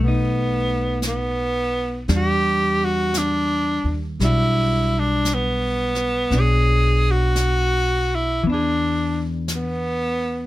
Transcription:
0, 0, Header, 1, 5, 480
1, 0, Start_track
1, 0, Tempo, 1056338
1, 948, Time_signature, 4, 2, 24, 8
1, 4756, End_track
2, 0, Start_track
2, 0, Title_t, "Hollow-body jazz guitar"
2, 0, Program_c, 0, 26
2, 0, Note_on_c, 0, 57, 37
2, 35, Note_on_c, 0, 63, 36
2, 947, Note_off_c, 0, 57, 0
2, 950, Note_on_c, 0, 55, 37
2, 951, Note_on_c, 0, 62, 40
2, 971, Note_off_c, 0, 63, 0
2, 1906, Note_off_c, 0, 55, 0
2, 1912, Note_on_c, 0, 55, 27
2, 1916, Note_off_c, 0, 62, 0
2, 1922, Note_on_c, 0, 62, 30
2, 1928, Note_on_c, 0, 66, 33
2, 2869, Note_off_c, 0, 55, 0
2, 2872, Note_on_c, 0, 59, 38
2, 2874, Note_off_c, 0, 62, 0
2, 2877, Note_off_c, 0, 66, 0
2, 2880, Note_on_c, 0, 62, 42
2, 2897, Note_on_c, 0, 73, 44
2, 3830, Note_off_c, 0, 59, 0
2, 3832, Note_on_c, 0, 52, 34
2, 3833, Note_off_c, 0, 62, 0
2, 3842, Note_off_c, 0, 73, 0
2, 3849, Note_on_c, 0, 59, 39
2, 3861, Note_on_c, 0, 62, 39
2, 3880, Note_on_c, 0, 68, 39
2, 4756, Note_off_c, 0, 52, 0
2, 4756, Note_off_c, 0, 59, 0
2, 4756, Note_off_c, 0, 62, 0
2, 4756, Note_off_c, 0, 68, 0
2, 4756, End_track
3, 0, Start_track
3, 0, Title_t, "Tenor saxophone"
3, 0, Program_c, 1, 66
3, 12, Note_on_c, 1, 59, 66
3, 462, Note_off_c, 1, 59, 0
3, 487, Note_on_c, 1, 59, 73
3, 939, Note_off_c, 1, 59, 0
3, 981, Note_on_c, 1, 67, 75
3, 1293, Note_on_c, 1, 66, 66
3, 1300, Note_off_c, 1, 67, 0
3, 1445, Note_on_c, 1, 62, 71
3, 1452, Note_off_c, 1, 66, 0
3, 1833, Note_off_c, 1, 62, 0
3, 1929, Note_on_c, 1, 64, 78
3, 2267, Note_on_c, 1, 62, 70
3, 2274, Note_off_c, 1, 64, 0
3, 2428, Note_on_c, 1, 59, 73
3, 2435, Note_off_c, 1, 62, 0
3, 2908, Note_on_c, 1, 68, 75
3, 2915, Note_off_c, 1, 59, 0
3, 3230, Note_on_c, 1, 66, 78
3, 3237, Note_off_c, 1, 68, 0
3, 3704, Note_on_c, 1, 64, 64
3, 3711, Note_off_c, 1, 66, 0
3, 3847, Note_off_c, 1, 64, 0
3, 3869, Note_on_c, 1, 62, 65
3, 4227, Note_off_c, 1, 62, 0
3, 4339, Note_on_c, 1, 59, 66
3, 4756, Note_off_c, 1, 59, 0
3, 4756, End_track
4, 0, Start_track
4, 0, Title_t, "Upright bass"
4, 0, Program_c, 2, 32
4, 0, Note_on_c, 2, 35, 53
4, 929, Note_off_c, 2, 35, 0
4, 947, Note_on_c, 2, 40, 65
4, 1726, Note_off_c, 2, 40, 0
4, 1746, Note_on_c, 2, 39, 51
4, 1897, Note_off_c, 2, 39, 0
4, 1906, Note_on_c, 2, 35, 63
4, 2848, Note_off_c, 2, 35, 0
4, 2865, Note_on_c, 2, 35, 69
4, 3808, Note_off_c, 2, 35, 0
4, 3834, Note_on_c, 2, 40, 54
4, 4756, Note_off_c, 2, 40, 0
4, 4756, End_track
5, 0, Start_track
5, 0, Title_t, "Drums"
5, 464, Note_on_c, 9, 25, 29
5, 464, Note_on_c, 9, 38, 31
5, 464, Note_on_c, 9, 44, 43
5, 509, Note_off_c, 9, 38, 0
5, 509, Note_off_c, 9, 44, 0
5, 945, Note_off_c, 9, 25, 0
5, 945, Note_on_c, 9, 25, 27
5, 945, Note_on_c, 9, 38, 19
5, 991, Note_off_c, 9, 38, 0
5, 1426, Note_off_c, 9, 25, 0
5, 1426, Note_on_c, 9, 25, 28
5, 1426, Note_on_c, 9, 38, 35
5, 1426, Note_on_c, 9, 44, 46
5, 1472, Note_off_c, 9, 38, 0
5, 1472, Note_off_c, 9, 44, 0
5, 1909, Note_off_c, 9, 25, 0
5, 1909, Note_on_c, 9, 25, 30
5, 1909, Note_on_c, 9, 38, 21
5, 1954, Note_off_c, 9, 38, 0
5, 2385, Note_off_c, 9, 25, 0
5, 2385, Note_on_c, 9, 25, 26
5, 2385, Note_on_c, 9, 38, 31
5, 2385, Note_on_c, 9, 44, 38
5, 2431, Note_off_c, 9, 38, 0
5, 2431, Note_off_c, 9, 44, 0
5, 2702, Note_on_c, 9, 38, 21
5, 2748, Note_off_c, 9, 38, 0
5, 2868, Note_off_c, 9, 25, 0
5, 2868, Note_on_c, 9, 25, 29
5, 2868, Note_on_c, 9, 38, 20
5, 2913, Note_off_c, 9, 38, 0
5, 3343, Note_off_c, 9, 25, 0
5, 3343, Note_on_c, 9, 25, 24
5, 3343, Note_on_c, 9, 38, 34
5, 3343, Note_on_c, 9, 44, 42
5, 3388, Note_off_c, 9, 38, 0
5, 3388, Note_off_c, 9, 44, 0
5, 3825, Note_off_c, 9, 25, 0
5, 3825, Note_on_c, 9, 25, 30
5, 4308, Note_off_c, 9, 25, 0
5, 4308, Note_on_c, 9, 25, 25
5, 4308, Note_on_c, 9, 38, 32
5, 4308, Note_on_c, 9, 44, 37
5, 4353, Note_off_c, 9, 38, 0
5, 4353, Note_off_c, 9, 44, 0
5, 4756, Note_off_c, 9, 25, 0
5, 4756, End_track
0, 0, End_of_file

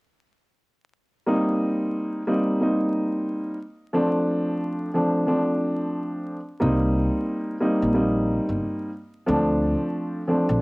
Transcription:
0, 0, Header, 1, 3, 480
1, 0, Start_track
1, 0, Tempo, 666667
1, 919, Time_signature, 4, 2, 24, 8
1, 7643, End_track
2, 0, Start_track
2, 0, Title_t, "Grand piano"
2, 0, Program_c, 0, 0
2, 910, Note_on_c, 0, 55, 86
2, 914, Note_on_c, 0, 58, 85
2, 918, Note_on_c, 0, 60, 83
2, 921, Note_on_c, 0, 63, 101
2, 1590, Note_off_c, 0, 55, 0
2, 1592, Note_off_c, 0, 58, 0
2, 1594, Note_off_c, 0, 60, 0
2, 1596, Note_off_c, 0, 63, 0
2, 1635, Note_on_c, 0, 55, 93
2, 1639, Note_on_c, 0, 58, 78
2, 1642, Note_on_c, 0, 60, 78
2, 1646, Note_on_c, 0, 63, 94
2, 1862, Note_off_c, 0, 55, 0
2, 1864, Note_off_c, 0, 58, 0
2, 1866, Note_off_c, 0, 60, 0
2, 1868, Note_off_c, 0, 63, 0
2, 1878, Note_on_c, 0, 55, 81
2, 1882, Note_on_c, 0, 58, 74
2, 1886, Note_on_c, 0, 60, 76
2, 1889, Note_on_c, 0, 63, 92
2, 2555, Note_off_c, 0, 55, 0
2, 2556, Note_off_c, 0, 58, 0
2, 2558, Note_off_c, 0, 60, 0
2, 2560, Note_off_c, 0, 63, 0
2, 2829, Note_on_c, 0, 53, 91
2, 2833, Note_on_c, 0, 57, 92
2, 2836, Note_on_c, 0, 60, 81
2, 2840, Note_on_c, 0, 62, 106
2, 3510, Note_off_c, 0, 53, 0
2, 3512, Note_off_c, 0, 57, 0
2, 3513, Note_off_c, 0, 60, 0
2, 3515, Note_off_c, 0, 62, 0
2, 3557, Note_on_c, 0, 53, 87
2, 3561, Note_on_c, 0, 57, 84
2, 3564, Note_on_c, 0, 60, 84
2, 3568, Note_on_c, 0, 62, 97
2, 3780, Note_off_c, 0, 53, 0
2, 3784, Note_off_c, 0, 57, 0
2, 3787, Note_off_c, 0, 60, 0
2, 3789, Note_off_c, 0, 62, 0
2, 3791, Note_on_c, 0, 53, 83
2, 3795, Note_on_c, 0, 57, 81
2, 3798, Note_on_c, 0, 60, 82
2, 3802, Note_on_c, 0, 62, 99
2, 4580, Note_off_c, 0, 53, 0
2, 4582, Note_off_c, 0, 57, 0
2, 4584, Note_off_c, 0, 60, 0
2, 4585, Note_off_c, 0, 62, 0
2, 4751, Note_on_c, 0, 55, 89
2, 4755, Note_on_c, 0, 58, 86
2, 4759, Note_on_c, 0, 60, 82
2, 4762, Note_on_c, 0, 63, 98
2, 5431, Note_off_c, 0, 55, 0
2, 5433, Note_off_c, 0, 58, 0
2, 5435, Note_off_c, 0, 60, 0
2, 5436, Note_off_c, 0, 63, 0
2, 5475, Note_on_c, 0, 55, 91
2, 5478, Note_on_c, 0, 58, 79
2, 5482, Note_on_c, 0, 60, 77
2, 5486, Note_on_c, 0, 63, 93
2, 5702, Note_off_c, 0, 55, 0
2, 5704, Note_off_c, 0, 58, 0
2, 5705, Note_off_c, 0, 60, 0
2, 5707, Note_off_c, 0, 63, 0
2, 5718, Note_on_c, 0, 55, 86
2, 5722, Note_on_c, 0, 58, 76
2, 5725, Note_on_c, 0, 60, 74
2, 5729, Note_on_c, 0, 63, 91
2, 6394, Note_off_c, 0, 55, 0
2, 6396, Note_off_c, 0, 58, 0
2, 6398, Note_off_c, 0, 60, 0
2, 6400, Note_off_c, 0, 63, 0
2, 6670, Note_on_c, 0, 53, 94
2, 6673, Note_on_c, 0, 57, 90
2, 6677, Note_on_c, 0, 60, 83
2, 6680, Note_on_c, 0, 62, 103
2, 7350, Note_off_c, 0, 53, 0
2, 7352, Note_off_c, 0, 57, 0
2, 7354, Note_off_c, 0, 60, 0
2, 7355, Note_off_c, 0, 62, 0
2, 7398, Note_on_c, 0, 53, 87
2, 7401, Note_on_c, 0, 57, 82
2, 7405, Note_on_c, 0, 60, 84
2, 7408, Note_on_c, 0, 62, 96
2, 7620, Note_off_c, 0, 53, 0
2, 7624, Note_off_c, 0, 57, 0
2, 7627, Note_off_c, 0, 60, 0
2, 7629, Note_off_c, 0, 62, 0
2, 7643, End_track
3, 0, Start_track
3, 0, Title_t, "Upright bass"
3, 0, Program_c, 1, 32
3, 4764, Note_on_c, 1, 36, 96
3, 5087, Note_off_c, 1, 36, 0
3, 5632, Note_on_c, 1, 34, 89
3, 6032, Note_off_c, 1, 34, 0
3, 6112, Note_on_c, 1, 31, 83
3, 6186, Note_off_c, 1, 31, 0
3, 6684, Note_on_c, 1, 38, 100
3, 7006, Note_off_c, 1, 38, 0
3, 7552, Note_on_c, 1, 34, 95
3, 7643, Note_off_c, 1, 34, 0
3, 7643, End_track
0, 0, End_of_file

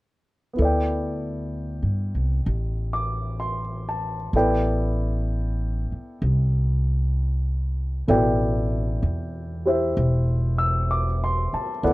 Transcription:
0, 0, Header, 1, 4, 480
1, 0, Start_track
1, 0, Tempo, 936037
1, 300, Time_signature, 4, 2, 24, 8
1, 6119, End_track
2, 0, Start_track
2, 0, Title_t, "Grand piano"
2, 0, Program_c, 0, 0
2, 274, Note_on_c, 0, 59, 35
2, 290, Note_on_c, 0, 64, 32
2, 302, Note_on_c, 0, 69, 36
2, 319, Note_on_c, 0, 74, 35
2, 332, Note_on_c, 0, 79, 39
2, 401, Control_c, 0, 64, 127
2, 1504, Note_on_c, 0, 86, 34
2, 1742, Note_on_c, 0, 84, 34
2, 1844, Note_off_c, 0, 86, 0
2, 1993, Note_on_c, 0, 81, 35
2, 2127, Note_off_c, 0, 84, 0
2, 2213, Note_off_c, 0, 59, 0
2, 2221, Note_off_c, 0, 64, 0
2, 2227, Note_off_c, 0, 69, 0
2, 2231, Note_off_c, 0, 74, 0
2, 2231, Note_off_c, 0, 79, 0
2, 2233, Control_c, 0, 64, 0
2, 2233, Note_on_c, 0, 59, 43
2, 2233, Note_on_c, 0, 64, 36
2, 2235, Note_on_c, 0, 69, 40
2, 2238, Note_on_c, 0, 74, 37
2, 2239, Note_on_c, 0, 79, 46
2, 2319, Control_c, 0, 64, 127
2, 2329, Note_off_c, 0, 81, 0
2, 4136, Note_off_c, 0, 64, 0
2, 4138, Note_off_c, 0, 69, 0
2, 4142, Note_on_c, 0, 47, 41
2, 4143, Note_on_c, 0, 64, 38
2, 4144, Note_off_c, 0, 74, 0
2, 4146, Note_off_c, 0, 79, 0
2, 4146, Note_on_c, 0, 69, 40
2, 4148, Note_off_c, 0, 59, 0
2, 4152, Note_on_c, 0, 74, 36
2, 4154, Note_on_c, 0, 79, 47
2, 4943, Note_off_c, 0, 64, 0
2, 4951, Note_on_c, 0, 64, 33
2, 4952, Note_on_c, 0, 67, 29
2, 4958, Note_on_c, 0, 72, 32
2, 4967, Note_on_c, 0, 76, 35
2, 5427, Note_on_c, 0, 88, 34
2, 5593, Note_on_c, 0, 86, 37
2, 5675, Note_off_c, 0, 88, 0
2, 5762, Note_on_c, 0, 84, 42
2, 5894, Note_off_c, 0, 86, 0
2, 5917, Note_on_c, 0, 81, 39
2, 6003, Note_off_c, 0, 84, 0
2, 6061, Note_off_c, 0, 47, 0
2, 6062, Note_off_c, 0, 64, 0
2, 6063, Note_off_c, 0, 69, 0
2, 6064, Note_off_c, 0, 67, 0
2, 6065, Note_off_c, 0, 74, 0
2, 6067, Note_off_c, 0, 72, 0
2, 6067, Note_off_c, 0, 79, 0
2, 6069, Control_c, 0, 64, 0
2, 6070, Note_on_c, 0, 59, 42
2, 6070, Note_on_c, 0, 64, 39
2, 6072, Note_off_c, 0, 76, 0
2, 6073, Note_on_c, 0, 74, 39
2, 6074, Note_on_c, 0, 78, 44
2, 6077, Note_on_c, 0, 69, 38
2, 6119, Note_off_c, 0, 59, 0
2, 6119, Note_off_c, 0, 64, 0
2, 6119, Note_off_c, 0, 69, 0
2, 6119, Note_off_c, 0, 74, 0
2, 6119, Note_off_c, 0, 78, 0
2, 6119, Note_off_c, 0, 81, 0
2, 6119, End_track
3, 0, Start_track
3, 0, Title_t, "Upright bass"
3, 0, Program_c, 1, 32
3, 300, Note_on_c, 1, 38, 62
3, 923, Note_off_c, 1, 38, 0
3, 936, Note_on_c, 1, 43, 43
3, 1089, Note_off_c, 1, 43, 0
3, 1101, Note_on_c, 1, 36, 43
3, 1252, Note_off_c, 1, 36, 0
3, 1263, Note_on_c, 1, 33, 61
3, 2205, Note_off_c, 1, 33, 0
3, 2221, Note_on_c, 1, 33, 63
3, 3010, Note_off_c, 1, 33, 0
3, 3188, Note_on_c, 1, 36, 61
3, 4125, Note_off_c, 1, 36, 0
3, 4145, Note_on_c, 1, 33, 68
3, 4604, Note_off_c, 1, 33, 0
3, 4628, Note_on_c, 1, 40, 53
3, 5085, Note_off_c, 1, 40, 0
3, 5112, Note_on_c, 1, 28, 65
3, 5893, Note_off_c, 1, 28, 0
3, 6068, Note_on_c, 1, 38, 62
3, 6119, Note_off_c, 1, 38, 0
3, 6119, End_track
4, 0, Start_track
4, 0, Title_t, "Muted upright bass strokes"
4, 3036, Note_on_c, 9, 29, 28
4, 3087, Note_off_c, 9, 29, 0
4, 5912, Note_on_c, 9, 29, 28
4, 5964, Note_off_c, 9, 29, 0
4, 6119, End_track
0, 0, End_of_file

